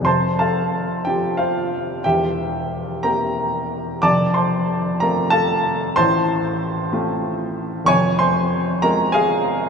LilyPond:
<<
  \new Staff \with { instrumentName = "Grand piano" } { \time 6/8 \key f \major \tempo 4. = 62 <c'' a'' c'''>8 <a' f'' a''>4 <g' g''>8 <f' c'' f''>4 | <g' e'' g''>4. <bes' g'' bes''>4. | <d'' a'' d'''>8 <c'' a'' c'''>4 <bes' bes''>8 <a' f'' a''>4 | <c'' a'' c'''>4. r4. |
\key f \minor <des'' aes'' des'''>8 <c'' aes'' c'''>4 <bes' bes''>8 <aes' f'' aes''>4 | }
  \new Staff \with { instrumentName = "Grand piano" } { \time 6/8 \key f \major <f,, f,>4. <f c' f'>4. | <e,, e,>4. <bes c' g'>4. | <f,, f,>4. <a c' f'>4. | <a,, a,>4. <a c' f'>4. |
\key f \minor <f,, f,>4. <aes c' f'>4. | }
>>